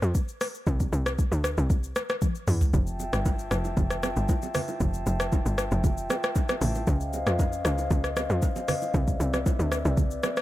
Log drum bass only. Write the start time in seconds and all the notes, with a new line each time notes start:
0.02 F2
0.67 C2
0.92 C2
1.32 D2
1.58 C2
2.48 E2
2.74 F1
3.13 G1
3.51 F1
3.77 F1
4.16 G1
4.80 F1
5.06 F1
5.46 G1
5.72 F1
6.61 A1
6.87 C#2
7.27 F2
7.65 C#2
7.91 C#2
8.30 F2
8.94 C2
9.20 C2
9.59 D2
9.85 C2